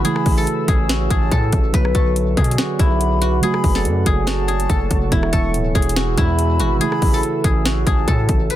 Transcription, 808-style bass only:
0.26 A1
0.68 A1
1.10 A1
1.32 A2
1.53 A1
1.74 B1
1.95 B1
2.37 B2
2.79 B1
3.64 F#1
3.85 F#2
4.06 F#1
4.70 F#1
4.91 F#1
5.12 E1
5.33 E1
5.54 D1
5.75 E1
6.18 E2
6.60 G#1
7.02 A1
7.44 A1
7.87 A1
8.08 A2
8.29 A1

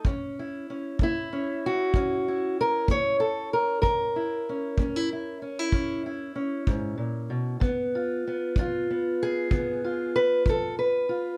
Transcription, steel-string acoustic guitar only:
0.06 F#2 C#4
0.39 E4
0.70 C#4
1.02 A#3 E4
1.33 C#4
1.66 F#4
1.95 F#2 C#4
2.28 E4
2.61 A#4
2.89 A#3 C#5
3.20 A4
3.53 A#4
3.82 F#2 A#4
4.16 E4
4.49 C#4
4.79 A#3 C#4
4.96 E4
5.13 E4
5.42 C#4
5.59 E4
5.73 F#2 C#4
6.06 E4
6.36 C#4
6.67 G#2
6.98 A#2
7.30 B2
7.60 C#3 B3
7.95 F4
8.27 B3
8.58 F3 F4
8.90 B3
9.23 G#4
9.51 C#3 B3
9.84 F4
10.16 B4
10.46 F3 A4
10.79 B4
11.09 F4

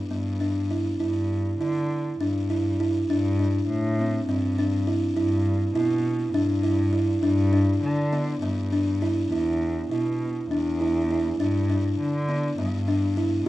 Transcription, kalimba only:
0.11 B3
0.40 D4
0.71 E4
1.00 E4
1.61 E4
2.21 D4
2.50 E4
2.80 E4
3.10 D4
3.39 D4
3.99 C4
4.29 C4
4.59 D4
4.87 E4
5.16 E4
5.75 E4
6.34 D4
6.63 E4
6.93 E4
7.23 D4
7.53 D4
8.13 B3
8.42 B3
8.73 D4
9.02 E4
9.32 E4
9.91 E4
10.51 D4
10.81 E4
11.11 E4
11.40 D4
11.70 D4
12.29 B3
12.58 B3
12.88 D4
13.17 E4

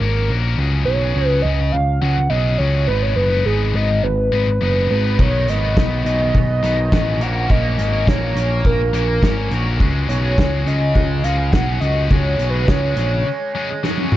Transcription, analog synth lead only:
Already playing: A#4
0.85 C#5
1.28 B4
1.42 D#5
1.72 F5
2.01 F#5
2.30 D#5
2.58 C#5
2.87 B4
3.02 C#5
3.16 B4
3.46 G#4
3.75 D#5
4.03 B4
4.91 B4
5.21 C#5
5.49 D#5
6.06 D#5
7.22 F#5
7.51 D#5
8.08 C#5
8.66 A#4
10.09 C#5
10.67 D#5
11.24 F5
11.51 F#5
11.80 D#5
12.11 C#5
12.50 B4
12.69 C#5

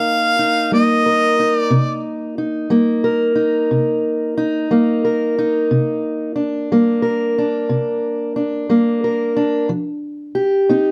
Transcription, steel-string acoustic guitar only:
Already playing: C3 A#3 D#4 A#4
0.39 D#4
0.72 G3 A#3
1.06 A#4
1.40 D#4
1.70 C3
2.38 D#4
2.70 G3 A#3
3.04 A#4
3.35 D#4
3.71 C3
4.38 D#4
4.71 G3 A#3
5.05 A#4
5.38 D#4
5.71 C3
6.36 D4
6.72 G3 A#3
7.02 A#4
7.38 D4
7.69 C3
8.36 D4
8.69 G3 A#3
9.04 A#4
9.37 D4
9.69 F3
10.35 G4
10.69 C4 D#4

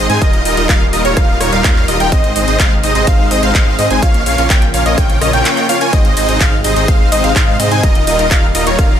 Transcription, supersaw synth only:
0.10 G#3 C4 D#4 C5 G#5
0.22 G3 D#4 F4 A#4 D#5
0.46 G3 D#4 F4 A#4 D#5
0.57 G3 D#4 F4 A#4 D#5
0.69 G3 D#4 F4 A#4 F5
0.93 G3 D#4 F4 A#4 D#5
1.05 G3 D#4 F4 A#4 C#5
1.17 G3 D#4 F4 A#4 F5
1.41 G3 D#4 F4 A#4 C#5
1.53 G3 D#4 F4 A#4 F5
1.65 G3 D#4 F4 A#4 F5
1.88 G3 D#4 F4 A#4 D#5
2.00 G3 D#4 F4 A#4 G5
2.12 G#3 C4 D#4 C5 D#5
2.36 G#3 C4 D#4 C5 D#5
2.48 G#3 C4 D#4 C5 D#5
2.60 G#3 C4 D#4 C5 F5
2.83 G#3 C4 D#4 C5 D#5
2.95 G#3 C4 D#4 C5 D#5
3.07 G#3 C4 D#4 C5 F5
3.31 G#3 C4 D#4 C5 D#5
3.43 G#3 C4 D#4 C5 F5
3.55 G#3 C4 D#4 C5 F5
3.79 G#3 C4 D#4 C5 D#5
3.91 G#3 C4 D#4 C5 G#5
4.02 A#3 C#4 F4 C#5 F5
4.26 A#3 C#4 F4 C#5 F5
4.38 A#3 C#4 F4 C#5 F5
4.50 A#3 C#4 F4 C#5 G5
4.74 A#3 C#4 F4 C#5 F5
4.86 A#3 C#4 F4 C#5 D#5
4.98 A#3 C#4 F4 C#5 G5
5.22 A#3 C#4 F4 C#5 D#5
5.34 A#3 C#4 F4 C#5 G5
5.45 A#3 C#4 F4 C#5 G5
5.69 A#3 C#4 F4 C#5 F5
5.81 A#3 C#4 F4 C#5 G#5
5.93 G#3 C4 D#4 C5 D#5
6.17 G#3 C4 D#4 C5 D#5
6.29 G#3 C4 D#4 C5 D#5
6.41 G#3 C4 D#4 C5 F5
6.65 G#3 C4 D#4 C5 D#5
6.76 G#3 C4 D#4 C5 D#5
6.88 G#3 C4 D#4 C5 F5
7.12 G#3 C4 D#4 C5 D#5
7.24 G#3 C4 D#4 C5 F5
7.36 G#3 C4 D#4 C5 F5
7.60 G#3 C4 D#4 C5 D#5
7.72 G#3 C4 D#4 C5 G#5
7.83 G3 D#4 F4 A#4 D#5
8.07 G3 D#4 F4 A#4 D#5
8.19 G3 D#4 F4 A#4 D#5
8.31 G3 D#4 F4 A#4 F5
8.55 G3 D#4 F4 A#4 D#5
8.67 G3 D#4 F4 A#4 C#5
8.79 G3 D#4 F4 A#4 F5

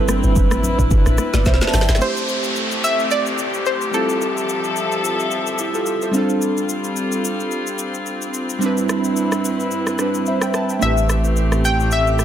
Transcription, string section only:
Already playing: C4 E4 B4
2.01 A3 C4 G4
3.94 F3 A4 E5
6.14 G3 C4 F4
8.62 G2 E4 B4
10.82 A3 C4 G4

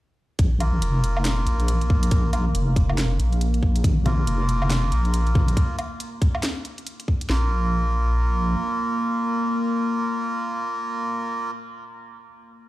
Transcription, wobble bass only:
0.39 A#1
0.82 F1
1.47 A#1
2.11 A#1
2.55 F1
3.19 A#1
3.84 A#1
4.27 F1
4.92 A#1
7.30 A#1

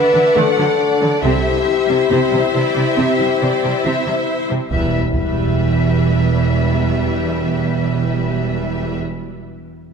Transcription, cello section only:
0.14 D3
0.36 D3
0.58 D3
1.02 D3
1.23 C3
1.89 C3
2.11 C3
2.33 C3
2.55 C3
2.76 C3
2.98 C3
3.19 C3
3.42 C3
3.64 C3
3.84 C3
4.06 C3
4.51 C3
4.72 E2
5.15 E2

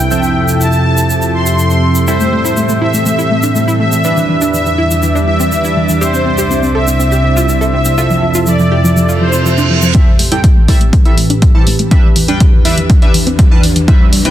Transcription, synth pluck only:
2.08 E4
2.20 A3
2.32 A3
2.45 E4
2.57 A3
2.69 A3
2.81 E4
2.94 A3
3.06 A3
3.19 E4
3.31 A3
3.43 D4
3.55 A3
3.68 E4
3.80 A3
3.92 A3
4.04 D4
4.17 E3
4.29 E3
4.41 D4
4.54 E3
4.66 E3
4.78 E4
4.91 E3
5.03 E3
5.15 D4
5.27 E3
5.40 C4
5.52 E3
5.64 E4
5.77 E3
5.89 E3
6.01 G4
6.14 C4
6.26 C4
6.38 G4
6.50 C4
6.63 C4
6.75 A4
6.87 C4
7.00 C4
7.12 G4
7.24 C4
7.37 F4
7.49 C4
7.61 A4
7.73 C4
7.86 C4
7.98 F4
8.10 F3
8.22 F3
8.35 F4
8.47 F3
8.59 F3
8.72 G4
8.84 F3
8.96 F3
9.09 F4
9.21 F3
9.33 E4
9.45 F3
9.58 D4
9.70 F3
9.82 F3
9.95 E4
10.07 A3
10.19 A3
10.32 E4
10.44 A3
10.56 A3
10.68 E4
10.81 A3
10.93 A3
11.05 E4
11.18 A3
11.30 D4
11.55 E4
11.67 A3
11.79 A3
11.91 D4
12.04 E3
12.16 E3
12.28 D4
12.40 E3
12.53 E3
12.65 E4
12.77 E3
12.90 E3
13.02 D4
13.14 E3
13.27 C4
13.39 E3
13.51 E4
13.63 E3
13.76 E3
13.88 E4
14.00 G3
14.13 G3
14.25 E4

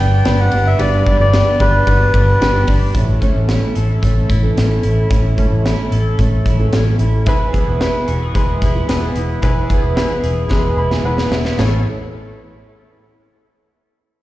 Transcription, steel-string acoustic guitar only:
Already playing: G3 B3 D4 G4
0.25 G3 B3 D4 G4
0.52 G3 B3 D4 G4
0.80 G2 D3 G3 B3 D4 G4
1.20 G3 B3 D4 G4
1.60 G3 B3 D4 G4
2.00 G3 B3 D4 G4
2.40 G3 B3 D4 G4
2.68 G3 B3 D4 G4
2.95 A3 C#4 E4 A4
3.22 A2 E3 A3 C#4 E4 A4
3.62 A3 C#4 E4 A4
4.02 A3 C#4 E4 A4
4.43 A2 E3 A3 C#4 E4 A4
4.69 A2 E3 A3 C#4 E4 A4
5.10 A3 C#4 E4 A4
5.37 A2 E3 A3 C#4 E4 A4
5.77 A3 C#4 E4 A4
6.18 A3 C#4 E4 A4
6.59 A2 E3 A3 C#4 E4 A4
6.86 A2 E3 A3 C#4 E4 A4
7.26 E3 B3 E4 G#4
7.53 E3 B3 E4 G#4
7.93 B3 E4 G#4
8.34 E3 B3 E4 G#4
8.75 E3 B3 E4 G#4
9.02 E3 B3 E4 G#4
9.42 E3 B3 E4 G#4
9.69 E3 B3 E4 G#4
10.09 B3 E4 G#4
10.50 E3 B3 E4 G#4
10.91 E3 B3 E4 G#4
11.18 E3 B3 E4 G#4
11.58 A2 E3 A3 C#4 E4 A4

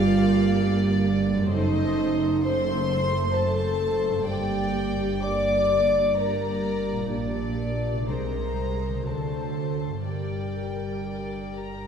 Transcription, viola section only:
Already playing: A#3 G4
1.51 A3 A4
2.45 A3 A4
3.36 A3 A4
4.26 A#3 G4
5.23 A#3 G4
6.16 A#3 G4
7.10 A#3 G4
8.08 G#3 G#4
9.06 F#3 A4
10.05 G3 A#4

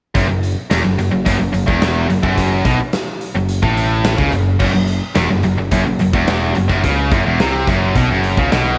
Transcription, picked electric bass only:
0.15 F#1
0.29 F#1
0.71 E1
0.85 F#1
0.99 F#1
1.12 F#1
1.26 F#1
1.40 F#1
1.54 F#1
1.68 E1
2.10 F#1
2.23 F#1
2.65 B1
3.35 F#1
3.63 A1
4.18 C#2
4.33 F#1
4.61 F#1
4.74 F#1
5.16 E1
5.31 F#1
5.45 F#1
5.59 F#1
5.71 F#1
5.87 F#1
6.01 F#1
6.13 E1
6.57 F#1
6.69 F#1
6.84 C#2
7.12 F#1
7.26 E1
7.41 C2
7.67 F#1
7.95 B1
8.11 F#1
8.38 C#2
8.52 B1

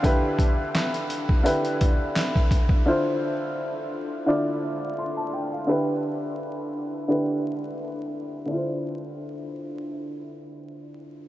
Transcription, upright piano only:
Already playing: F5
0.02 D3 D4 E4 G4 B4
1.43 D3 D4 E4 G4 B4
2.86 D3 D4 E4 F4 C5
4.26 D3 D4 E4 F4 D5
4.99 C6
5.17 A5
5.34 G5
5.52 F5
5.67 D3 D4 E4 G4 B4
7.08 D3 D4 E4 G4 B4
8.46 D3 D4
8.51 E4 F4
8.55 C5

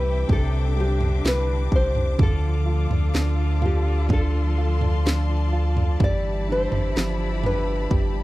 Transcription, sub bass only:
Already playing: C2
0.29 C2
1.24 C2
1.72 C2
2.19 D2
2.90 D2
3.14 D2
6.00 G1
6.72 G1
6.96 G1
7.91 G1

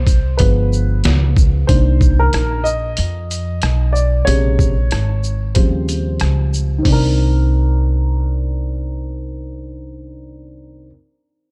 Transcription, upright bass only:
Already playing: C2
0.40 G1
1.05 C#2
1.69 C2
2.34 A#1
2.98 F2
3.63 B1
4.27 A#1
4.92 G#1
5.56 D#2
6.21 C#2
6.85 C2

